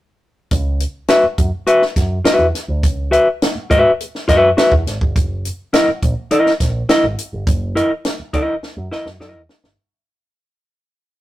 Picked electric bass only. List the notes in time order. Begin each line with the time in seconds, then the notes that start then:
0.51 C#2
1.23 muted picked electric bass stroke
1.38 F#2
1.96 F#2
2.25 muted picked electric bass stroke
2.38 E2
2.68 D2
2.83 C#2
3.55 muted picked electric bass stroke
3.71 G#2
4.29 F#2
4.72 E2
4.86 G#1
5.01 G1
5.16 F#1
5.88 muted picked electric bass stroke
6.02 A#1
6.60 A#1
6.89 muted picked electric bass stroke
7.04 G#1
7.33 G1
7.47 F#1
8.19 muted picked electric bass stroke
8.33 C#2
8.77 F#2
9.05 F#2
9.20 F#2
9.34 E2
9.64 G1